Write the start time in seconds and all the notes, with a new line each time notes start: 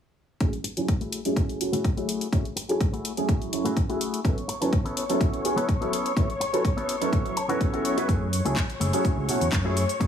0.40 F#3 A3 C#4 E4 G#4, kick, closed hi-hat
0.53 closed hi-hat
0.64 muted clean electric guitar stroke, closed hi-hat
0.77 F#3 A3 C#4 E4 G#4, muted clean electric guitar stroke, closed hi-hat
0.88 kick, closed hi-hat
1.01 A3 E4 F#4 G#4, closed hi-hat
1.12 closed hi-hat
1.25 F#3 A3 C#4 E4 G#4, closed hi-hat
1.36 muted clean electric guitar stroke, kick, closed hi-hat
1.49 closed hi-hat
1.61 F#3 A3 C#4 E4 F#4, closed hi-hat
1.72 A3 E4 F#4 G#4, closed hi-hat
1.84 kick, closed hi-hat
1.96 F#3 A3 C#4 E4 F#4 G#4, closed hi-hat
2.09 closed hi-hat
2.21 closed hi-hat
2.32 F#3 A3 C#4 E4 G#4, kick, closed hi-hat
2.45 closed hi-hat
2.56 muted clean electric guitar stroke, closed hi-hat
2.69 F#3 A3 C#4 E4 G#4, muted clean electric guitar stroke, closed hi-hat
2.81 kick, closed hi-hat
2.93 A3 E4 F#4 G#4, closed hi-hat
3.05 closed hi-hat
3.17 F#3 A3 C#4 E4 G#4, closed hi-hat
3.28 muted clean electric guitar stroke, kick, closed hi-hat
3.42 closed hi-hat
3.52 F#3 A3 C#4 E4 F#4, closed hi-hat
3.65 A3 E4 F#4 G#4, closed hi-hat
3.77 kick, closed hi-hat
3.89 F#3 A3 C#4 E4 F#4 G#4, closed hi-hat
4.01 closed hi-hat
4.14 closed hi-hat
4.24 F#3 B3 C#4 E4 A4 C#5 C#6, kick, closed hi-hat
4.38 closed hi-hat
4.48 muted clean electric guitar stroke, closed hi-hat
4.61 F#3 B3 C#4 E4 A4, muted clean electric guitar stroke, closed hi-hat
4.73 kick, closed hi-hat
4.85 B3 C#4 E4 A4, closed hi-hat
4.97 closed hi-hat
5.09 F#3 B3 C#4 E4 A4, closed hi-hat
5.20 muted clean electric guitar stroke, kick, closed hi-hat
5.34 closed hi-hat
5.45 F#3 B3 C#4 E4 G#4, closed hi-hat
5.57 B3 C#4 E4 A4, closed hi-hat
5.69 kick, closed hi-hat
5.81 F#3 B3 C#4 E4 A4, closed hi-hat
5.93 closed hi-hat
6.06 closed hi-hat
6.17 F#3 B3 C#4 E4 A4, kick, closed hi-hat
6.30 closed hi-hat
6.40 muted clean electric guitar stroke, closed hi-hat
6.53 F#3 B3 C#4 E4 A4, muted clean electric guitar stroke, closed hi-hat
6.65 kick, closed hi-hat
6.76 B3 C#4 E4 A4, closed hi-hat
6.89 closed hi-hat
7.01 F#3 B3 C#4 E4 A4, closed hi-hat
7.12 muted clean electric guitar stroke, kick, closed hi-hat
7.26 closed hi-hat
7.37 A5, closed hi-hat
7.49 F#3 B3 C#4 E4 F#4 A4 F#5, closed hi-hat
7.61 E5, kick, closed hi-hat
7.73 F#3 B3 C#4 E4 F#4 A4, closed hi-hat
7.84 C#5, closed hi-hat
7.97 F#3 B3 C#4 E4 B4, closed hi-hat
8.08 F#2 F#3 A3 C#4 E4 G#4 C#5 C#6, kick, closed hi-hat, cabasa
8.33 open hi-hat, cabasa
8.45 C#2 F#3 A3 C#4 E4 G#4, closed hi-hat, cabasa
8.57 kick, clap, closed hi-hat, cabasa
8.70 closed hi-hat
8.80 F#1 A3 E4 G#4, open hi-hat, cabasa
8.93 F#3 A3 C#4 E4 G#4, closed hi-hat, cabasa
9.05 muted fingered electric bass stroke, kick, closed hi-hat, cabasa
9.17 C#2
9.28 B2 F#3 A3 C#4 E4 F#4, open hi-hat, cabasa
9.41 E2, closed hi-hat, cabasa
9.52 F#2, muted clean electric guitar stroke, kick, clap, closed hi-hat, cabasa
9.64 F#3 A3 C#4 E4 G#4
9.77 open hi-hat, cabasa
9.89 closed hi-hat, cabasa
10.00 F#2 F#3 A3 C#4 E4 G#4, kick, closed hi-hat, cabasa